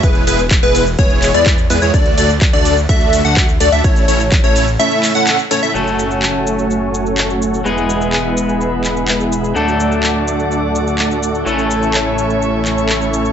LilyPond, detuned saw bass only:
\new Staff \with { instrumentName = "Detuned saw bass" } { \clef bass \time 4/4 \key a \major \tempo 4 = 126 e,,8 e,,8. e,,8. e,,8. e,8. e,16 e,16 | d,8 d,8. d,8. d,8. d,8. d,16 d,16 | a,,8 a,,8. a,,8. r2 | fis,,1 |
e,,1 | d,1 | a,,1 | }